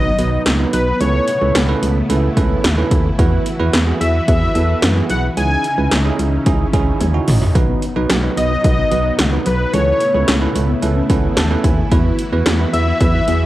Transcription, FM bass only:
Already playing: B1
0.19 B1
0.46 C#2
0.73 B1
1.01 C#2
1.42 C#2
1.55 C#2
1.83 C#2
2.10 C#2
2.37 C#2
2.64 D#2
2.91 D#2
3.19 E2
3.60 E2
3.74 E2
4.01 E2
4.28 E2
4.55 E2
4.83 F#2
5.10 B1
5.37 C#2
5.78 C#2
5.92 C#2
6.19 C#2
6.46 C#2
6.73 C#2
7.01 D#2
7.28 A1
7.55 B1
7.96 B1
8.10 B1
8.37 B1
8.65 B1
8.92 B1
9.19 C#2
9.46 B1
9.74 C#2
10.14 C#2
10.28 C#2
10.55 C#2
10.83 C#2
11.10 C#2
11.37 D#2
11.64 D#2
11.92 E2
12.33 E2
12.46 E2
12.73 E2
13.01 E2
13.28 E2

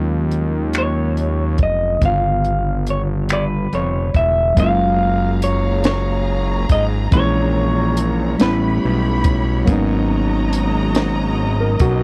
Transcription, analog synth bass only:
Already playing: D#2
1.60 F1
2.02 G1
3.73 F1
4.15 E1
4.58 F#1
6.70 G#1
7.13 A#1
8.42 A1
8.85 B1
9.68 G#1
11.81 B1

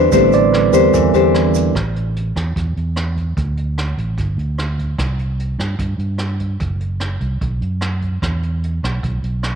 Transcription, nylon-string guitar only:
0.12 A3 D4 G4 C5
0.73 D4 G4 C5
0.93 E3
1.14 D4 G4 C5

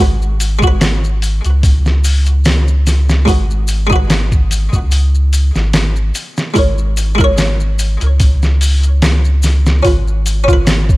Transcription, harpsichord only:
Already playing: G#3
0.00 F#4 B4
0.59 G#3
0.64 F#4 B4
3.25 G#3 D#4 F#4
3.30 B4
3.87 G#3 D#4
3.93 F#4 B4
6.54 G#3 E4 A#4
6.58 C#5
7.15 G#3 E4
7.21 A#4 C#5
9.83 C#4 F4
9.87 B4
10.44 C#4
10.49 F4
10.53 B4

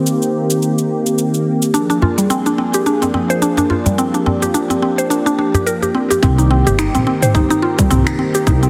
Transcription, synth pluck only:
1.74 D4
1.90 D4
2.02 F4
2.18 G3
2.30 C4
2.46 D4
2.58 C4
2.74 G4
2.86 D4
3.02 C4
3.14 C4
3.30 C5
3.42 D4
3.58 D4
3.70 F4
3.86 G3
3.98 C4
4.14 D4
4.26 C4
4.42 G4
4.54 D4
4.70 C4
4.82 C4
4.98 C5
5.10 D4
5.26 D4
5.39 D4
5.55 G4
5.66 A#4
5.82 G4
5.95 C4
6.10 G4
6.23 C4
6.38 D#4
6.51 C4
6.67 G4
6.79 D#4
6.95 C4
7.07 C4
7.22 C5
7.35 D#4
7.50 D#4
7.62 F4
7.79 G3
7.91 C4
8.07 D#4
8.19 C4
8.35 G4
8.47 D#4
8.63 C4

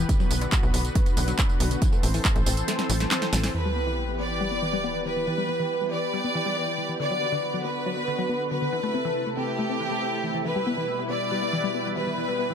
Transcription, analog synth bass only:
0.31 B1
0.63 B1
0.74 B1
1.17 B1
1.60 B1
2.03 A1
2.36 A1
2.46 A1
2.90 A1
3.33 A1

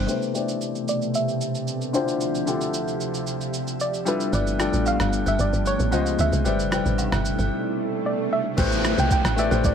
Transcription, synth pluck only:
Already playing: C5
0.89 D5
1.15 E5
1.95 C5
3.81 D5
4.08 B4
4.34 D5
4.88 F5
5.28 E5
5.41 D5
5.67 C#5
6.20 E5
8.06 D5
8.33 E5
9.00 G5
9.12 G5
9.39 E5
9.65 D5

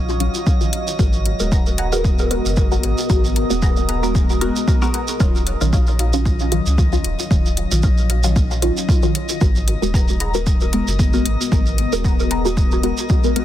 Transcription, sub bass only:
Already playing: A#1
0.99 G#1
1.40 D#1
2.45 F#1
2.83 G#1
3.10 G#1
3.50 D#1
5.20 D#1
5.61 A#1
6.66 C#2
7.04 D#1
7.31 D#1
7.71 A#1
9.41 G#1
9.82 D#1
10.87 F#1
11.26 G#1
11.52 G#1
11.93 D#1

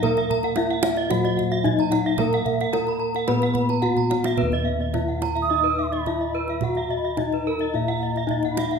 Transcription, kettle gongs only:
Already playing: A#2
0.06 A#4
0.57 E4
1.11 A#2
1.64 E4
2.19 A#4
2.74 E4
3.29 A#2
3.82 E4
4.37 B4
4.42 D#2
4.95 E4
6.07 E4
6.63 F#4
7.19 E4
7.75 A#2
8.30 E4

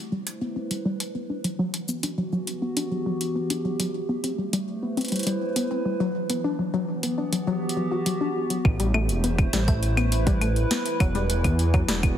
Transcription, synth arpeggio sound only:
0.12 G3
0.41 B3
0.56 C4
0.71 G3
0.85 G3
1.15 B3
1.30 D4
1.44 F#3
1.59 F#3
1.89 B3
2.03 D4
2.18 F#3
2.33 F#3
2.62 B3
2.77 D4
2.91 F#3
3.06 F#3
3.36 B3
3.50 D4
3.65 F#3
3.80 F#3
4.09 B3
4.24 C4
4.38 G3
4.53 G3
4.83 B3
4.97 C4
5.12 G3
5.27 G3
5.56 B3
5.71 C4
5.86 G3
6.00 F#3
6.30 B3
6.44 D4
6.59 F#3
6.74 F#3
7.03 B3
7.18 D4
7.33 F#3
7.47 F#3
7.77 F#3
7.91 F#4
8.06 F#3
8.21 D4
8.50 F#3
8.80 G3
8.94 A3
9.24 B3
9.53 G3
9.68 A3
9.97 B3
10.27 G3
10.41 A3
10.71 B3
11.00 F#3
11.15 G3
11.44 B3
11.74 F#3
11.89 G3

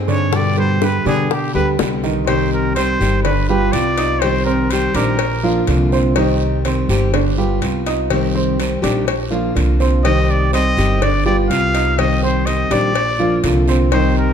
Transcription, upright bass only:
Already playing: G2
1.05 B2
1.55 D2
1.80 C2
3.01 G1
3.73 C2
4.94 A#1
5.68 C2
6.89 G1
7.61 C2
8.83 A#1
9.56 C2
10.77 G1
11.50 C2
12.71 A#1
13.44 C2

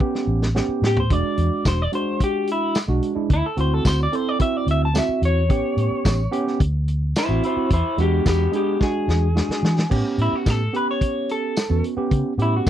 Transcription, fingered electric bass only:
0.27 A1
0.68 muted fingered electric bass stroke
0.82 A2
1.11 E1
1.38 E2
1.51 muted fingered electric bass stroke
1.65 E1
2.88 B1
3.16 muted fingered electric bass stroke
3.30 D2
3.57 D2
3.85 D2
4.67 D2
5.09 muted fingered electric bass stroke
5.22 E2
5.50 A1
5.77 A2
5.91 muted fingered electric bass stroke
6.05 A1
6.60 D2
7.29 A1
7.57 muted fingered electric bass stroke
7.70 E2
7.98 E2
8.26 E2
9.08 E2
9.49 muted fingered electric bass stroke
9.63 E3
9.91 A2
10.18 A2
10.32 muted fingered electric bass stroke
10.46 A2
11.70 E2
11.97 muted fingered electric bass stroke
12.11 C#3
12.38 A2

